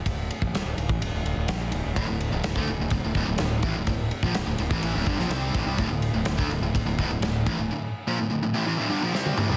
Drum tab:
RD |x-x-x-x-x-x-x-x-|x-x-x-x-x-x-x-x-|x-x-x-x-x-x-x-x-|x-x-x-x-x-x-x-x-|
SD |----o-------o---|----o-------o---|----o------oo---|----o-------o---|
T1 |----------------|----------------|----------------|----------------|
T2 |----------------|----------------|----------------|----------------|
FT |----------------|----------------|----------------|----------------|
BD |o--o---o--------|o----o--o-o---o-|o--o---o--o---o-|o----o--o-o---o-|

RD |----------------|
SD |------------o---|
T1 |-------------o--|
T2 |--------------o-|
FT |---------------o|
BD |----------------|